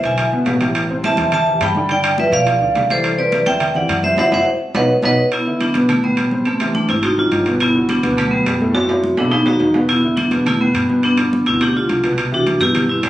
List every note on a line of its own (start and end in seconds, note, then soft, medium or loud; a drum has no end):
0.00 0.30 B1 medium
0.00 0.13 D3 medium
0.00 0.13 D4 medium
0.00 0.13 E4 medium
0.00 high timbale medium
0.05 0.31 E5 medium
0.05 0.31 G#5 medium
0.18 0.30 D3 medium
0.18 0.30 D4 medium
0.18 0.31 E4 medium
0.18 high conga soft
0.18 high timbale medium
0.32 0.45 B1 medium
0.32 0.44 B2 medium
0.32 0.44 B3 medium
0.32 0.45 B4 medium
0.32 high conga soft
0.45 1.12 A1 medium
0.45 0.59 B2 medium
0.45 0.59 B3 medium
0.45 0.59 B4 medium
0.45 high conga medium
0.45 high timbale medium
0.45 low timbale medium
0.61 0.85 E3 medium
0.61 0.85 E4 medium
0.61 0.85 G4 medium
0.61 high conga medium
0.61 high timbale medium
0.75 high timbale medium
0.90 1.02 C3 medium
0.90 1.02 C4 medium
0.90 1.02 C5 medium
0.90 high conga soft
1.04 1.16 E3 medium
1.04 1.16 E4 medium
1.04 1.16 G4 medium
1.04 1.31 E5 medium
1.04 1.31 A5 medium
1.04 high conga loud
1.04 high timbale medium
1.17 1.57 E2 medium
1.17 1.42 C3 medium
1.17 1.42 C4 medium
1.17 1.42 C5 medium
1.17 high conga medium
1.17 high timbale medium
1.32 1.60 E5 medium
1.32 1.60 A5 loud
1.32 high conga soft
1.32 low conga medium
1.32 high timbale medium
1.46 1.71 E3 medium
1.46 1.71 E4 medium
1.46 1.71 G4 medium
1.46 high conga soft
1.46 low conga medium
1.61 2.27 G2 loud
1.61 1.88 G5 medium
1.61 1.89 B5 loud
1.61 high conga medium
1.61 high timbale medium
1.61 low timbale medium
1.75 1.88 D3 medium
1.75 1.88 D4 loud
1.75 1.88 D5 loud
1.75 high conga medium
1.89 2.13 D3 medium
1.89 2.14 D4 medium
1.89 2.14 D5 medium
1.89 2.17 D5 medium
1.89 2.17 G5 loud
1.89 high timbale medium
2.04 high conga soft
2.04 high timbale loud
2.18 2.42 F3 medium
2.18 2.42 F4 medium
2.18 2.42 G4 medium
2.18 2.32 B4 medium
2.18 2.32 E5 medium
2.18 high conga medium
2.32 2.58 B2 loud
2.32 2.87 D5 medium
2.32 2.86 F5 loud
2.32 high timbale medium
2.46 2.58 F3 medium
2.46 2.58 F4 medium
2.46 2.58 G4 medium
2.46 high conga soft
2.46 high timbale medium
2.60 2.74 D2 medium
2.60 2.73 D3 medium
2.60 2.73 D4 medium
2.60 2.73 D5 medium
2.60 high conga soft
2.75 3.41 C2 loud
2.75 2.87 D3 medium
2.75 2.87 D4 medium
2.75 2.88 D5 medium
2.75 high conga medium
2.75 high timbale medium
2.75 low timbale medium
2.90 3.13 E3 medium
2.90 3.14 E4 medium
2.90 3.14 G4 medium
2.90 3.17 A4 medium
2.90 3.17 C5 medium
2.90 high conga medium
2.90 high timbale medium
3.04 high conga soft
3.04 high timbale medium
3.18 3.30 C3 medium
3.18 3.30 C4 loud
3.18 3.45 B4 medium
3.18 3.30 C5 loud
3.18 3.48 D5 medium
3.18 high conga soft
3.32 3.44 E3 medium
3.32 3.44 E4 medium
3.32 3.45 G4 medium
3.32 high conga loud
3.32 high timbale medium
3.46 3.86 E2 medium
3.46 3.70 C3 medium
3.46 3.70 C4 medium
3.46 3.70 C5 loud
3.46 3.74 E5 medium
3.46 3.73 G5 loud
3.46 high conga loud
3.46 high timbale medium
3.60 high conga soft
3.60 low conga medium
3.60 high timbale medium
3.75 3.99 E3 medium
3.75 3.99 E4 medium
3.75 3.99 G4 medium
3.75 4.02 D5 medium
3.75 4.02 F#5 medium
3.75 high conga soft
3.75 low conga medium
3.89 4.16 F#2 loud
3.89 high conga medium
3.89 high timbale loud
4.03 4.15 C3 loud
4.03 4.16 C4 loud
4.03 4.17 C5 medium
4.03 4.16 C5 medium
4.03 4.18 E5 medium
4.03 high conga medium
4.17 4.27 C4 loud
4.17 4.27 E4 loud
4.17 4.27 F#4 loud
4.17 4.28 C5 medium
4.17 4.28 E5 medium
4.17 4.28 F#5 loud
4.17 high conga loud
4.17 high timbale loud
4.32 4.42 F#1 loud
4.32 4.41 C4 loud
4.32 4.41 E4 loud
4.32 4.41 F#4 loud
4.32 4.42 C5 loud
4.32 4.42 E5 loud
4.32 4.42 F#5 loud
4.32 high conga loud
4.32 high timbale loud
4.74 4.85 B1 loud
4.74 4.84 B3 medium
4.74 4.84 D#4 medium
4.74 4.84 F#4 medium
4.74 4.85 B4 loud
4.74 4.85 D#5 medium
4.74 4.84 F#5 medium
4.74 high conga loud
4.74 high timbale loud
5.02 5.14 B1 loud
5.02 5.13 B3 loud
5.02 5.13 D#4 loud
5.02 5.12 F#4 loud
5.02 5.14 B4 loud
5.02 5.14 D#5 loud
5.02 5.13 F#5 loud
5.02 high conga loud
5.02 high timbale loud
5.31 5.60 B3 medium
5.31 5.59 E4 medium
5.31 high conga soft
5.31 high timbale medium
5.47 5.70 D3 medium
5.47 5.70 D4 medium
5.47 5.70 E4 medium
5.47 high conga soft
5.61 5.88 B3 medium
5.61 5.90 D4 medium
5.61 high conga medium
5.61 high timbale medium
5.74 6.15 B1 medium
5.74 5.98 B2 medium
5.74 5.99 B3 medium
5.74 5.99 B4 medium
5.74 high conga loud
5.74 high timbale medium
5.89 5.96 A3 medium
5.89 5.96 E4 medium
5.89 high conga soft
5.89 low conga medium
5.89 high timbale medium
6.03 6.27 B2 medium
6.03 6.44 G3 medium
6.03 6.27 B3 medium
6.03 6.48 B3 medium
6.03 6.27 B4 medium
6.03 high conga soft
6.03 low conga medium
6.17 6.83 A1 medium
6.17 high conga medium
6.17 high timbale medium
6.31 6.44 C3 medium
6.31 6.44 C4 medium
6.31 6.44 C5 loud
6.31 high conga medium
6.45 6.58 C3 medium
6.45 6.73 A3 medium
6.45 6.73 C4 medium
6.45 6.58 C4 medium
6.45 6.58 C5 medium
6.45 high conga soft
6.45 high timbale medium
6.60 6.84 E3 medium
6.60 6.84 E4 medium
6.60 6.84 G4 medium
6.60 high conga soft
6.60 high timbale loud
6.75 6.82 A3 medium
6.75 6.81 D4 medium
6.75 high conga loud
6.89 7.29 G#1 medium
6.89 7.12 C3 medium
6.89 7.13 C4 medium
6.89 7.03 C4 medium
6.89 7.03 E4 medium
6.89 7.13 C5 medium
6.89 high timbale medium
7.03 7.11 D#4 medium
7.03 7.10 F#4 medium
7.03 high conga soft
7.03 high timbale medium
7.17 7.29 D#3 medium
7.17 7.46 D4 medium
7.17 7.29 D#4 medium
7.17 7.45 F4 medium
7.17 7.30 F#4 medium
7.17 high conga soft
7.31 7.98 G1 loud
7.31 7.44 D#3 medium
7.31 7.44 D#4 medium
7.31 7.44 F#4 medium
7.31 high conga medium
7.31 high timbale medium
7.46 7.70 B2 medium
7.46 7.70 B3 medium
7.46 7.70 B4 loud
7.46 high conga medium
7.46 high timbale medium
7.60 7.88 B3 medium
7.60 7.90 E4 loud
7.60 high conga soft
7.60 high timbale medium
7.74 7.98 D3 medium
7.74 7.98 D4 medium
7.74 7.99 F#4 medium
7.74 high conga soft
7.89 8.17 B3 medium
7.89 8.16 D4 medium
7.89 high conga loud
7.89 high timbale medium
8.03 8.43 D2 medium
8.03 8.27 B2 loud
8.03 8.27 B3 medium
8.03 8.27 B4 medium
8.03 high conga loud
8.03 high timbale medium
8.17 8.25 F#3 medium
8.17 8.24 A3 medium
8.17 high conga soft
8.17 low conga medium
8.17 high timbale medium
8.31 8.56 B2 medium
8.31 8.73 G3 medium
8.31 8.76 B3 medium
8.31 8.56 B3 medium
8.31 8.56 B4 medium
8.31 high conga soft
8.46 9.12 F#2 loud
8.46 high conga medium
8.46 high timbale medium
8.46 low timbale medium
8.61 8.73 A2 medium
8.61 8.73 A3 medium
8.61 8.73 A4 medium
8.61 high conga medium
8.74 8.87 A2 medium
8.74 8.87 A3 medium
8.74 9.15 C4 medium
8.74 9.19 F#4 loud
8.74 8.87 A4 medium
8.74 high conga soft
8.74 high timbale medium
8.89 9.12 C3 medium
8.89 9.12 C4 medium
8.89 9.13 E4 medium
8.89 high conga soft
8.89 high timbale medium
9.04 high conga loud
9.17 9.57 B1 loud
9.17 9.41 A2 medium
9.17 9.41 A3 medium
9.17 9.32 B3 medium
9.17 9.33 D4 medium
9.17 9.41 A4 medium
9.17 low timbale medium
9.31 9.39 B3 medium
9.31 9.38 D#4 loud
9.31 high conga soft
9.31 low timbale medium
9.46 9.58 D#3 medium
9.46 9.58 D#4 medium
9.46 9.74 D#4 medium
9.46 9.73 F#4 medium
9.46 9.59 F#4 medium
9.46 low timbale medium
9.60 10.26 E2 medium
9.60 9.72 D#3 medium
9.60 9.73 D#4 medium
9.60 9.73 F#4 medium
9.60 high conga medium
9.60 low timbale medium
9.74 9.98 B2 loud
9.74 9.99 B3 loud
9.74 9.99 B4 loud
9.74 high conga medium
9.74 low timbale medium
9.89 10.17 B3 medium
9.89 10.16 E4 loud
9.89 high conga soft
9.89 high timbale medium
10.04 10.27 D3 medium
10.04 10.27 D4 medium
10.04 10.28 E4 medium
10.04 high conga soft
10.17 10.44 B3 medium
10.17 10.44 D4 loud
10.17 high conga loud
10.17 high timbale medium
10.31 10.71 E2 medium
10.31 10.55 B2 medium
10.31 10.55 B3 medium
10.31 10.55 B4 medium
10.31 high conga medium
10.31 high timbale medium
10.46 10.53 A3 medium
10.46 10.54 E4 medium
10.46 high conga soft
10.46 low conga medium
10.46 high timbale medium
10.60 10.84 B2 medium
10.60 11.01 G3 medium
10.60 10.84 B3 medium
10.60 11.01 B3 medium
10.60 10.84 B4 medium
10.60 high conga soft
10.74 11.41 G2 loud
10.74 high conga medium
10.74 high timbale medium
10.89 11.01 B2 loud
10.89 11.01 B3 medium
10.89 11.01 B4 medium
10.89 high conga medium
11.03 11.15 B2 medium
11.03 11.15 B3 medium
11.03 11.44 B3 medium
11.03 11.48 D4 loud
11.03 11.16 B4 medium
11.03 high timbale medium
11.17 11.41 D3 medium
11.17 11.41 D4 medium
11.17 11.41 F4 medium
11.17 high timbale loud
11.33 high conga loud
11.46 11.86 D2 medium
11.46 11.70 B2 medium
11.46 11.70 B3 medium
11.46 11.61 C4 medium
11.46 11.60 E4 loud
11.46 11.70 B4 medium
11.46 high timbale medium
11.61 11.69 D4 medium
11.61 11.68 G4 loud
11.61 high conga soft
11.61 high timbale medium
11.74 11.86 D3 medium
11.74 11.86 D4 medium
11.74 12.03 D4 medium
11.74 11.87 F4 medium
11.74 12.02 F4 medium
11.74 high conga soft
11.89 12.55 C2 loud
11.89 12.01 D3 medium
11.89 12.01 D4 medium
11.89 12.01 F4 medium
11.89 high conga medium
11.89 high timbale medium
12.03 12.27 B2 medium
12.03 12.27 B3 loud
12.03 12.27 B4 loud
12.03 high conga medium
12.03 high timbale medium
12.18 high conga soft
12.18 high timbale medium
12.32 12.55 E3 medium
12.32 12.60 D4 medium
12.32 12.56 E4 medium
12.32 12.62 F#4 loud
12.32 12.56 G4 medium
12.32 high conga soft
12.47 high conga loud
12.47 high timbale medium
12.60 13.00 G2 loud
12.60 12.84 B2 medium
12.60 12.84 B3 medium
12.60 12.88 E4 medium
12.60 12.87 G4 loud
12.60 12.84 B4 medium
12.60 high conga loud
12.60 high timbale medium
12.75 high conga soft
12.75 low conga medium
12.75 high timbale loud
12.89 13.10 B2 medium
12.89 13.10 B3 medium
12.89 13.02 C4 medium
12.89 13.03 E4 medium
12.89 13.10 B4 medium
12.89 high conga soft
13.03 13.10 F#2 loud
13.03 13.10 G3 medium
13.03 13.10 C4 medium
13.03 high conga medium
13.03 high timbale loud
13.03 low timbale medium